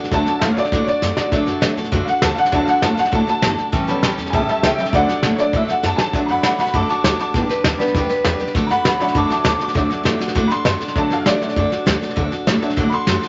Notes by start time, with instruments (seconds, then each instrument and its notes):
Already playing: steel-string acoustic guitar F#4 A4
0.00 steel-string acoustic guitar D4, snare
0.11 upright bass D2, steel-string acoustic guitar D3 A3 D4 F#4 A4, honky-tonk piano F#3 A3 D4 A5, kick, snare
0.26 steel-string acoustic guitar D4 F#4 A4, muted upright bass stroke, snare
0.39 upright bass A2, steel-string acoustic guitar A3 D4 F#4, honky-tonk piano E5, snare, hi-hat pedal
0.44 steel-string acoustic guitar A4, honky-tonk piano F5
0.54 honky-tonk piano F#3 A3 D4 C#5, steel-string acoustic guitar F#4 A4, muted upright bass stroke, snare
0.59 steel-string acoustic guitar D4, honky-tonk piano D5
0.65 snare
0.72 upright bass A2, steel-string acoustic guitar D3 A3 D4 F#4 A4, kick, snare
0.84 steel-string acoustic guitar F#4 A4, honky-tonk piano C#5, muted upright bass stroke, snare
0.89 steel-string acoustic guitar D4, honky-tonk piano D5
1.02 upright bass F#2, steel-string acoustic guitar A3 D4 F#4 A4, snare, hi-hat pedal
1.17 steel-string acoustic guitar D4 F#4 A4, muted upright bass stroke, snare
1.31 upright bass D2, steel-string acoustic guitar D3 A3 D4 F#4 A4, honky-tonk piano F#3 A3 D4, kick, snare
1.46 upright bass F#2, steel-string acoustic guitar D4 F#4 A4, snare
1.61 upright bass D2, steel-string acoustic guitar A3 D4 F#4 A4, snare, hi-hat pedal
1.77 upright bass A2, steel-string acoustic guitar D4 F#4 A4, snare
1.84 snare
1.92 upright bass F#2, steel-string acoustic guitar D3 A3 D4 F#4 A4, kick, snare
2.05 steel-string acoustic guitar D4 F#4 A4, honky-tonk piano F5, muted upright bass stroke, snare
2.09 honky-tonk piano F#5
2.22 upright bass D2, steel-string acoustic guitar A3 D4 F#4 A4, honky-tonk piano A5, snare, hi-hat pedal
2.35 steel-string acoustic guitar D4 F#4 A4, honky-tonk piano F5, muted upright bass stroke, snare
2.39 honky-tonk piano F#5
2.45 snare
2.52 upright bass D2, steel-string acoustic guitar D3 A3 D4 F#4 A4, honky-tonk piano F#3 A3 D4 A5, kick, snare
2.65 steel-string acoustic guitar F#4 A4, honky-tonk piano F5, muted upright bass stroke, snare
2.69 steel-string acoustic guitar D4, honky-tonk piano F#5
2.82 upright bass A2, steel-string acoustic guitar A3 D4 F#4 A4, honky-tonk piano A5, snare, hi-hat pedal
2.95 steel-string acoustic guitar F#4 A4, honky-tonk piano F5, muted upright bass stroke, snare
2.99 steel-string acoustic guitar D4, honky-tonk piano F#5
3.05 snare
3.12 upright bass A2, steel-string acoustic guitar D3 A3 D4 F#4 A4, honky-tonk piano A5, kick, snare
3.27 steel-string acoustic guitar D4 F#4 A4, honky-tonk piano A5, muted upright bass stroke, snare
3.42 upright bass G1, steel-string acoustic guitar A3 D4 F#4 A4, snare, hi-hat pedal
3.58 steel-string acoustic guitar D4 F#4 A4, snare
3.72 upright bass A1, steel-string acoustic guitar A2 E3 G3 C#4 G4 A4, kick, snare
3.87 upright bass C#2, honky-tonk piano G3 B3 C#4, steel-string acoustic guitar G3 C#4 G4 A4, snare
4.02 upright bass A1, steel-string acoustic guitar G3 C#4 G4 A4, snare, hi-hat pedal
4.17 upright bass E2, steel-string acoustic guitar G3 C#4 G4 A4, snare
4.26 snare
4.30 upright bass C#2, steel-string acoustic guitar A2 E3 G3 C#4 G4 A4, honky-tonk piano G#5, kick, snare
4.34 honky-tonk piano E5 A5
4.48 steel-string acoustic guitar G3 C#4 G4 A4, honky-tonk piano E5 A5, muted upright bass stroke, snare
4.63 upright bass C#2, steel-string acoustic guitar G3 C#4 G4 A4, honky-tonk piano E5 G5, snare, hi-hat pedal
4.78 steel-string acoustic guitar G3 C#4 G4 A4, honky-tonk piano E5 G5, muted upright bass stroke, snare
4.85 snare
4.93 upright bass D2, steel-string acoustic guitar D3 A3 D4 F#4 A4, honky-tonk piano F#3 A3 D4 D5 F#5, kick, snare
5.08 steel-string acoustic guitar D4 F#4 A4, muted upright bass stroke, snare
5.23 upright bass A2, steel-string acoustic guitar A3 D4 F#4 A4, snare, hi-hat pedal
5.36 honky-tonk piano F#3 A3 D4 C#5, steel-string acoustic guitar F#4 A4, muted upright bass stroke, snare
5.40 steel-string acoustic guitar D4, honky-tonk piano D5
5.53 upright bass A2, steel-string acoustic guitar D3 A3 D4 F#4 A4, honky-tonk piano E5, kick, snare
5.68 steel-string acoustic guitar D4 F#4 A4, honky-tonk piano F#5, muted upright bass stroke, snare
5.83 upright bass F#2, steel-string acoustic guitar A3 D4 F#4 A4, honky-tonk piano A5, snare, hi-hat pedal
5.96 steel-string acoustic guitar D4 F#4 A4, honky-tonk piano G#5, muted upright bass stroke, snare
6.01 honky-tonk piano A5
6.13 upright bass D2, steel-string acoustic guitar D3 A3 D4 F#4 A4, honky-tonk piano F#3 A3 D4, kick, snare
6.26 upright bass F#2, steel-string acoustic guitar F#4 A4, honky-tonk piano A#5, snare
6.31 steel-string acoustic guitar D4, honky-tonk piano F#5 B5
6.43 upright bass D2, steel-string acoustic guitar A3 D4 F#4 A4, honky-tonk piano F#5 B5, snare, hi-hat pedal
6.58 upright bass A2, steel-string acoustic guitar D4 F#4 A4, honky-tonk piano F#5 B5, snare
6.67 snare
6.74 upright bass F#2, steel-string acoustic guitar D3 A3 D4 F#4 A4, honky-tonk piano A5 D6, kick, snare
6.88 steel-string acoustic guitar D4 F#4 A4, honky-tonk piano A5 D6, snare
7.04 upright bass D2, steel-string acoustic guitar A3 D4 F#4 A4, honky-tonk piano A5 D6, snare, hi-hat pedal
7.19 steel-string acoustic guitar D4 F#4 A4, honky-tonk piano A5 D6, snare
7.34 upright bass G1, steel-string acoustic guitar G3 D4 G4 B4, kick, snare
7.49 steel-string acoustic guitar D4 G4 B4, muted upright bass stroke, snare
7.64 upright bass D2, steel-string acoustic guitar G3 D4 G4 B4, snare, hi-hat pedal
7.78 honky-tonk piano G3 B3 D4, steel-string acoustic guitar D4 G4 B4, muted upright bass stroke, snare
7.87 snare
7.94 upright bass D2, steel-string acoustic guitar G3 D4 G4 B4, kick, snare
8.09 steel-string acoustic guitar D4 G4 B4, muted upright bass stroke, snare
8.24 upright bass E2, steel-string acoustic guitar G3 D4 G4 B4, snare, hi-hat pedal
8.40 steel-string acoustic guitar D4 G4 B4, muted upright bass stroke, snare
8.47 snare
8.55 upright bass D2, steel-string acoustic guitar D3 A3 D4 F#4 A4, kick, snare
8.67 upright bass F#2, steel-string acoustic guitar F#4 A4, honky-tonk piano F#5 A#5, snare
8.72 steel-string acoustic guitar D4, honky-tonk piano B5
8.84 upright bass D2, steel-string acoustic guitar A3 D4 F#4 A4, honky-tonk piano F#5 B5, snare, hi-hat pedal
8.99 upright bass A2, honky-tonk piano F#3 A3 D4 F#5 B5, steel-string acoustic guitar D4 F#4 A4, snare
9.08 snare
9.15 upright bass F#2, steel-string acoustic guitar D3 A3 D4 F#4 A4, honky-tonk piano A5 D6, kick, snare
9.29 steel-string acoustic guitar D4 F#4 A4, honky-tonk piano A5 D6, muted upright bass stroke, snare
9.44 upright bass D2, steel-string acoustic guitar A3 D4 F#4 A4, honky-tonk piano A5, snare, hi-hat pedal
9.48 honky-tonk piano D6
9.60 steel-string acoustic guitar D4 F#4 A4, honky-tonk piano D6, muted upright bass stroke, snare
9.68 snare
9.74 upright bass D2, steel-string acoustic guitar D3 A3 D4 F#4 A4, honky-tonk piano F#3 A3 D4, kick, snare
9.90 steel-string acoustic guitar D4 F#4 A4, muted upright bass stroke, snare
10.03 upright bass A2, steel-string acoustic guitar A3 D4 F#4 A4, snare, hi-hat pedal
10.19 steel-string acoustic guitar D4 F#4 A4, muted upright bass stroke, snare
10.28 snare
10.35 upright bass A2, steel-string acoustic guitar D3 A3 D4 F#4 A4, kick, snare
10.48 steel-string acoustic guitar F#4 A4, honky-tonk piano B5, muted upright bass stroke, snare
10.52 steel-string acoustic guitar D4, honky-tonk piano C6
10.65 upright bass F#2, steel-string acoustic guitar A3 D4 F#4 A4, snare, hi-hat pedal
10.80 steel-string acoustic guitar D4 F#4 A4, muted upright bass stroke, snare
10.88 snare
10.95 upright bass D2, steel-string acoustic guitar D3 A3 D4 F#4 A4, honky-tonk piano F#3 A3 D4 A5, kick, snare
11.10 upright bass F#2, steel-string acoustic guitar D4 F#4 A4, honky-tonk piano F5, snare
11.26 upright bass D2, steel-string acoustic guitar A3 D4 F#4 A4, honky-tonk piano D5, snare, hi-hat pedal
11.41 upright bass A2, honky-tonk piano F#3 A3 D4, steel-string acoustic guitar D4 F#4 A4, snare
11.49 snare
11.56 upright bass F#2, steel-string acoustic guitar D3 A3 D4 F#4 A4, kick, snare
11.70 steel-string acoustic guitar D4 F#4 A4, snare
11.86 upright bass D2, steel-string acoustic guitar A3 D4 F#4 A4, snare, hi-hat pedal
12.01 steel-string acoustic guitar D4 F#4 A4, muted upright bass stroke, snare
12.09 snare
12.16 upright bass D2, steel-string acoustic guitar D3 A3 D4 F#4 A4, kick, snare
12.31 steel-string acoustic guitar D4 F#4 A4, muted upright bass stroke, snare
12.47 upright bass A2, steel-string acoustic guitar A3 D4 F#4 A4, snare, hi-hat pedal
12.61 honky-tonk piano F#3 A3 D4, steel-string acoustic guitar D4 F#4 A4, muted upright bass stroke, snare
12.70 snare
12.77 upright bass A2, steel-string acoustic guitar D3 A3 D4 F#4 A4, kick, snare
12.90 steel-string acoustic guitar F#4 A4, honky-tonk piano B5, muted upright bass stroke, snare
12.94 steel-string acoustic guitar D4, honky-tonk piano C6
13.06 upright bass F#2, steel-string acoustic guitar A3 D4 F#4 A4, snare, hi-hat pedal
13.21 steel-string acoustic guitar D4 F#4 A4, snare